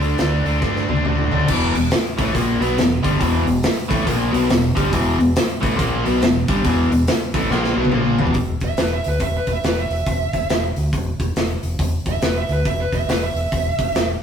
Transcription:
Already playing: fingered electric bass D2
0.01 overdriven electric guitar D3 A3 D4, open hi-hat
0.18 fingered electric bass D2, overdriven electric guitar D3 A3 D4, snare, open hi-hat
0.45 fingered electric bass D2, overdriven electric guitar D3 A3 D4, open hi-hat
0.61 fingered electric bass G2, overdriven electric guitar D3 A3 D4, kick, snare
0.76 snare
0.88 fingered electric bass D2, overdriven electric guitar D3 A3 D4, high tom
0.96 high tom
1.05 fingered electric bass D2, overdriven electric guitar D3 A3 D4, mid tom
1.18 mid tom
1.31 fingered electric bass D2, overdriven electric guitar D3 A3 D4, floor tom
1.40 floor tom
1.48 fingered electric bass E1, overdriven electric guitar E2 B2 E3, kick, crash
1.75 fingered electric bass E1, overdriven electric guitar E2 B2, open hi-hat
1.91 snare, open hi-hat
2.18 fingered electric bass A1, overdriven electric guitar A2 E3 A3, kick, open hi-hat
2.34 fingered electric bass A#1, overdriven electric guitar A#2 F3 A#3, kick, open hi-hat
2.60 fingered electric bass B1, overdriven electric guitar B2 F#3 B3, open hi-hat
2.77 fingered electric bass E1, overdriven electric guitar E2 B2, snare, open hi-hat
3.03 fingered electric bass G1, overdriven electric guitar G2 D3 G3, kick, open hi-hat
3.19 fingered electric bass E1, overdriven electric guitar E2 B2 E3, kick, open hi-hat
3.46 fingered electric bass E1, overdriven electric guitar E2 B2, open hi-hat
3.63 snare, open hi-hat
3.89 fingered electric bass A1, overdriven electric guitar A2 E3 A3, kick, open hi-hat
4.05 fingered electric bass A#1, overdriven electric guitar A#2 F3 A#3, kick, open hi-hat
4.32 fingered electric bass B1, overdriven electric guitar B2 F#3 B3, open hi-hat
4.48 fingered electric bass E1, overdriven electric guitar E2 B2, snare, open hi-hat
4.75 fingered electric bass G1, overdriven electric guitar G2 D3 G3, kick, open hi-hat
4.92 fingered electric bass E1, overdriven electric guitar E2 B2 E3, kick, open hi-hat
5.19 fingered electric bass E1, overdriven electric guitar E2 B2, open hi-hat
5.36 snare, open hi-hat
5.61 fingered electric bass A1, overdriven electric guitar A2 E3 A3, kick, open hi-hat
5.77 fingered electric bass A#1, overdriven electric guitar A#2 F3 A#3, kick, open hi-hat
6.05 fingered electric bass B1, overdriven electric guitar B2 F#3 B3, open hi-hat
6.22 fingered electric bass E1, overdriven electric guitar E2 B2, snare, open hi-hat
6.48 fingered electric bass G1, overdriven electric guitar G2 D3 G3, kick, open hi-hat
6.64 fingered electric bass E1, overdriven electric guitar E2 B2 E3, kick, open hi-hat
6.91 fingered electric bass E1, overdriven electric guitar E2 B2, open hi-hat
7.07 snare, open hi-hat
7.34 fingered electric bass A1, overdriven electric guitar A2 E3 A3, kick, open hi-hat
7.50 fingered electric bass A#1, overdriven electric guitar A#2 F3 A#3, snare
7.64 snare
7.76 fingered electric bass B1, overdriven electric guitar B2 F#3 B3
7.84 high tom
7.92 fingered electric bass A#1, overdriven electric guitar A#2 F3 A#3, mid tom
8.18 fingered electric bass E1, overdriven electric guitar E2 B2 E3, floor tom
8.27 floor tom
8.34 fingered electric bass E1, kick, open hi-hat
8.60 fingered electric bass E1, kick, open hi-hat
8.65 lead electric guitar E5
8.77 fingered electric bass E1, lead electric guitar B4, snare, open hi-hat
8.93 lead electric guitar E5
9.04 fingered electric bass D2, lead electric guitar B4, open hi-hat
9.20 fingered electric bass E1, lead electric guitar E5, kick, open hi-hat
9.37 lead electric guitar B4
9.47 fingered electric bass E1, kick, open hi-hat
9.53 lead electric guitar E5
9.64 fingered electric bass E1, lead electric guitar B4, snare, open hi-hat
9.79 lead electric guitar E5
9.90 fingered electric bass E1, open hi-hat
10.06 fingered electric bass E1, kick, open hi-hat
10.33 fingered electric bass E1, kick, open hi-hat
10.50 fingered electric bass E1, snare, open hi-hat
10.76 fingered electric bass D2, open hi-hat
10.93 fingered electric bass E1, kick, open hi-hat
11.19 fingered electric bass E1, kick, open hi-hat
11.36 fingered electric bass E1, snare, open hi-hat
11.63 fingered electric bass E1, open hi-hat
11.78 fingered electric bass E1, kick, open hi-hat
12.05 fingered electric bass E1, lead electric guitar E5, kick, open hi-hat
12.22 fingered electric bass E1, lead electric guitar B4, snare, open hi-hat
12.37 lead electric guitar E5
12.49 fingered electric bass D2, lead electric guitar B4, open hi-hat
12.65 fingered electric bass E1, lead electric guitar E5, kick, open hi-hat
12.81 lead electric guitar B4
12.92 fingered electric bass E1, lead electric guitar E5, kick, open hi-hat
13.08 fingered electric bass E1, lead electric guitar B4, snare, open hi-hat
13.23 lead electric guitar E5
13.34 fingered electric bass E1, open hi-hat
13.52 fingered electric bass E1, kick, open hi-hat
13.79 fingered electric bass E1, kick, open hi-hat
13.95 fingered electric bass E1, snare, open hi-hat

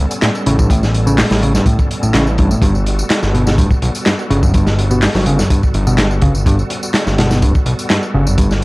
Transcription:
Already playing: tonewheel organ G3 B3 C#4 A4
0.11 closed hi-hat, tambourine
0.22 picked electric bass A2, snare, clap, closed hi-hat, tambourine
0.35 tambourine
0.46 analog synth bass A1, picked electric bass C#3, closed hi-hat
0.59 picked electric bass G2, kick, tambourine
0.70 picked electric bass A2, kick, closed hi-hat, tambourine
0.83 snare, tambourine
0.94 closed hi-hat
1.07 picked electric bass C#3, tambourine
1.18 picked electric bass A2, snare, clap, open hi-hat, tambourine
1.31 analog synth bass A1, picked electric bass G3, snare, tambourine
1.42 picked electric bass C#3, closed hi-hat
1.55 picked electric bass G2, snare, tambourine
1.66 picked electric bass A2, kick, closed hi-hat, tambourine
1.79 kick, tambourine
1.91 closed hi-hat
2.03 analog synth bass A1, picked electric bass A2, tambourine
2.14 analog synth bass A1, picked electric bass C#3, snare, clap, closed hi-hat, tambourine
2.27 tambourine
2.38 picked electric bass G2, kick, closed hi-hat
2.51 picked electric bass A2, tambourine
2.62 analog synth bass G1, picked electric bass G2, tonewheel organ F#4, kick, closed hi-hat, tambourine
2.75 tambourine
2.86 closed hi-hat
2.99 tambourine
3.10 snare, clap, closed hi-hat, tambourine
3.22 analog synth bass G1, snare, tambourine
3.34 picked electric bass B2, closed hi-hat
3.47 snare, tambourine
3.58 analog synth bass D1, picked electric bass G2, kick, closed hi-hat, tambourine
3.71 kick, tambourine
3.82 analog synth bass B1, closed hi-hat
3.95 closed hi-hat, tambourine
4.06 picked electric bass G2, snare, clap, closed hi-hat, tambourine
4.19 tambourine
4.30 analog synth bass G1, picked electric bass C#3, closed hi-hat
4.43 picked electric bass F#2, kick, tambourine
4.54 picked electric bass G2, kick, closed hi-hat, tambourine
4.66 snare, tambourine
4.79 closed hi-hat
4.91 picked electric bass B2, tambourine
5.02 picked electric bass G2, snare, clap, open hi-hat, tambourine
5.15 analog synth bass G1, picked electric bass F#3, snare, tambourine
5.26 picked electric bass C#3, closed hi-hat
5.39 picked electric bass F#2, snare, tambourine
5.50 picked electric bass G2, kick, closed hi-hat, tambourine
5.63 kick, tambourine
5.74 analog synth bass G1, closed hi-hat
5.87 picked electric bass B2, tambourine
5.98 picked electric bass G2, snare, clap, closed hi-hat, tambourine
6.11 tambourine
6.22 picked electric bass C#3, kick, closed hi-hat
6.35 tambourine
6.46 picked electric bass G2, kick, closed hi-hat, tambourine
6.59 tambourine
6.70 closed hi-hat
6.83 tambourine
6.94 snare, clap, closed hi-hat, tambourine
7.07 analog synth bass G1, snare, tambourine
7.18 picked electric bass B2, snare, closed hi-hat
7.31 snare, tambourine
7.42 analog synth bass D1, picked electric bass G2, kick, closed hi-hat, tambourine
7.55 kick, tambourine
7.66 analog synth bass B1, closed hi-hat
7.79 closed hi-hat, tambourine
7.90 picked electric bass G2, snare, clap, closed hi-hat, tambourine
8.03 tambourine
8.14 analog synth bass G1, picked electric bass C#3
8.27 picked electric bass F#2, tambourine
8.38 picked electric bass G2, kick, closed hi-hat, tambourine
8.51 snare, tambourine

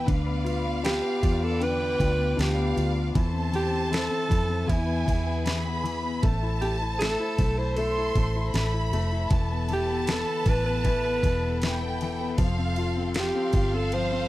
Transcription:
Already playing: grand piano E3 B3, string section B4
0.06 fingered electric bass D2, grand piano D3, string section D5 F5 D6, violin section F5, kick, ride
0.26 grand piano B3
0.44 grand piano F4, ride
0.64 grand piano B3
0.83 grand piano D4, alto saxophone G4, snare, ride
1.02 grand piano B3
1.22 fingered electric bass E2, grand piano F4, kick, ride
1.41 grand piano B3, alto saxophone A4
1.60 grand piano D3, alto saxophone B4, violin section G5, ride
1.80 grand piano B3
2.00 fingered electric bass D2, grand piano F4, kick, ride
2.18 grand piano B3
2.37 fingered electric bass D2, grand piano D4, alto saxophone G4, violin section F5, snare, ride
2.56 grand piano B3
2.76 fingered electric bass D2, grand piano F4, ride
2.96 grand piano B3
3.14 fingered electric bass E2, grand piano E3, string section A4 C5 E5 C6, violin section A5, kick, ride
3.33 grand piano C4
3.52 grand piano E3, alto saxophone G4, ride
3.71 grand piano C4
3.91 grand piano E3, alto saxophone A4, snare, ride
4.10 grand piano C4
4.29 fingered electric bass F2, grand piano E3, kick, ride
4.49 grand piano C4
4.67 fingered electric bass E2, grand piano E3, alto saxophone E4, string section G#4 B4, violin section G#5, kick, ride
4.86 grand piano B3
5.06 fingered electric bass E2, grand piano E3, kick, ride
5.26 grand piano B3
5.45 grand piano E3, violin section B5, snare, ride
5.64 grand piano B3
5.83 grand piano E3, ride
6.03 grand piano B3
6.22 fingered electric bass A1, grand piano A3, string section A4 C5, violin section A5, kick, ride
6.43 grand piano E4
6.61 grand piano A3, alto saxophone G4, ride
6.81 grand piano E4
6.99 grand piano A3, alto saxophone A4, snare, ride
7.20 grand piano E4
7.38 fingered electric bass B1, grand piano A3, kick, ride
7.58 grand piano E4, alto saxophone C5
7.76 grand piano A3, alto saxophone A4, violin section C6, ride
7.98 grand piano E4
8.15 fingered electric bass A1, grand piano A3, kick, ride
8.36 grand piano E4
8.53 fingered electric bass A1, grand piano A3, violin section B5, snare, ride
8.74 grand piano E4
8.92 fingered electric bass F1, grand piano A3, ride
9.12 grand piano E4
9.29 fingered electric bass E1, grand piano E3, string section B4 B5, violin section A5, kick, ride
9.51 grand piano B3
9.69 grand piano E3, ride
9.73 alto saxophone G4
9.89 grand piano B3
10.07 grand piano E3, snare, ride
10.12 alto saxophone A4
10.27 grand piano B3
10.46 fingered electric bass A1, grand piano E3, alto saxophone B4, kick, ride
10.66 grand piano B3, alto saxophone B4
10.84 grand piano E3, kick, ride
11.04 grand piano B3
11.23 fingered electric bass E1, grand piano E3, kick, ride
11.43 grand piano B3
11.61 grand piano E3, violin section G5, snare, ride
11.82 grand piano B3
12.01 grand piano E3, ride
12.21 grand piano B3
12.38 fingered electric bass F1, grand piano F3, violin section F5, string section F5 G5 C6, kick, ride
12.58 grand piano C4
12.76 grand piano F4, ride
12.96 grand piano C4
13.14 grand piano F4, violin section F5, snare, ride
13.20 alto saxophone G4
13.35 grand piano C4
13.53 fingered electric bass G1, grand piano F4, kick, ride
13.73 grand piano C4, alto saxophone A4
13.92 grand piano F3, alto saxophone C5, ride
14.12 grand piano C4

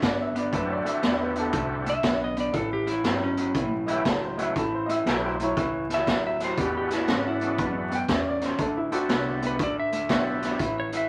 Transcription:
Already playing: electric slide guitar D4
0.02 upright bass G2, clean electric guitar D3 B3, upright piano D5, kick, snare, closed hi-hat
0.21 upright piano E5
0.35 clean electric guitar D3 B3, upright piano D5, closed hi-hat
0.52 upright bass F#2, clean electric guitar D3 A3, tonewheel organ A3 C4 D4 E4 F#4, upright piano B4, kick, closed hi-hat
0.67 upright piano C#5
0.72 upright piano D5
0.85 clean electric guitar D3 A3, upright piano E5, closed hi-hat
1.03 upright bass E2, clean electric guitar D3 B3, upright piano D5, snare, closed hi-hat
1.23 upright piano B4
1.36 clean electric guitar D3 B3, closed hi-hat
1.40 upright piano A4
1.53 upright bass C2, clean electric guitar D3 A3, kick, closed hi-hat
1.86 clean electric guitar D3 A3, electric slide guitar E5, closed hi-hat
2.03 upright bass B1, clean electric guitar D3 B3, kick, snare, closed hi-hat
2.24 electric slide guitar D#5
2.37 clean electric guitar D3 B3, electric slide guitar D5, closed hi-hat
2.53 upright bass A1, clean electric guitar A2 E3, electric slide guitar A4, kick, closed hi-hat
2.73 electric slide guitar G4
2.87 clean electric guitar A2 E3, electric slide guitar E4, closed hi-hat
3.04 upright bass G1, clean electric guitar A2 F#3, electric slide guitar C4, snare, closed hi-hat
3.24 electric slide guitar C#4
3.37 clean electric guitar A2 F#3, closed hi-hat
3.54 upright bass B1, clean electric guitar A2 E3, kick, closed hi-hat
3.86 clean electric guitar A2 E3, tonewheel organ A3 B3 C#4 E4 G4, upright piano D#5, closed hi-hat
3.90 upright piano E5
4.05 upright bass C#2, clean electric guitar A2 F#3, upright piano A4, kick, snare, closed hi-hat
4.24 upright piano C5
4.37 clean electric guitar A2 F#3, tonewheel organ A3 B3 C#4 E4 F#4, upright piano D#5, closed hi-hat
4.42 upright piano E5
4.56 upright bass A1, clean electric guitar A2 E3, upright piano A4, kick, closed hi-hat
4.75 upright piano C5
4.86 clean electric guitar A2 E3, upright piano D#5, closed hi-hat
4.91 upright piano E5
5.06 upright bass B1, clean electric guitar A2 F#3, tonewheel organ A3 B3 C#4 E4 G4, upright piano A4, snare, closed hi-hat
5.25 upright piano C5
5.40 clean electric guitar A2 F#3, upright piano E4 C#5, closed hi-hat
5.57 upright bass C#2, clean electric guitar A2 E3, kick, closed hi-hat
5.90 clean electric guitar A2 E3, snare, closed hi-hat
5.94 electric slide guitar E5
6.07 upright bass D2, clean electric guitar A2 F#3, kick, snare, closed hi-hat
6.27 electric slide guitar E5
6.40 clean electric guitar A2 F#3, electric slide guitar C5, snare, closed hi-hat
6.57 upright bass E2, clean electric guitar E2 B2, tonewheel organ G#3 B3 D4 E4 F#4, electric slide guitar G4, kick, closed hi-hat
6.77 electric slide guitar G4
6.91 clean electric guitar E2 B2, electric slide guitar E4, snare, closed hi-hat
7.08 clean electric guitar E2 C#3, upright bass G#2, electric slide guitar C4, snare, closed hi-hat
7.28 electric slide guitar E4
7.41 clean electric guitar E2 C#3, closed hi-hat
7.58 clean electric guitar E2 B2, upright bass F#2, kick, closed hi-hat
7.90 clean electric guitar E2 B2, upright piano F#5, closed hi-hat
7.95 upright piano G5
8.09 upright bass E2, clean electric guitar E2 C#3, upright piano E5, kick, snare, closed hi-hat
8.28 upright piano D5
8.41 clean electric guitar E2 C#3, upright piano C5, snare, closed hi-hat
8.59 upright bass D2, clean electric guitar D3 A3, upright piano A4, kick, closed hi-hat
8.77 upright piano E4
8.91 clean electric guitar D3 A3, tonewheel organ A3 C4 D4 E4 F#4, upright piano F#4, closed hi-hat
9.09 upright bass C2, clean electric guitar D3 B3, snare, closed hi-hat
9.42 clean electric guitar D3 B3, closed hi-hat
9.47 electric slide guitar B4
9.59 upright bass D2, clean electric guitar D3 A3, kick, closed hi-hat
9.63 electric slide guitar D5
9.79 electric slide guitar E5
9.92 clean electric guitar D3 A3, closed hi-hat
10.09 upright bass B1, clean electric guitar D3 B3, tonewheel organ A3 C4 D4 E4 F#4, kick, snare, closed hi-hat
10.42 clean electric guitar D3 B3, snare, closed hi-hat
10.59 upright bass A1, clean electric guitar A2 E3, kick, closed hi-hat
10.80 electric slide guitar C#5
10.92 clean electric guitar A2 E3, closed hi-hat
10.97 electric slide guitar E5

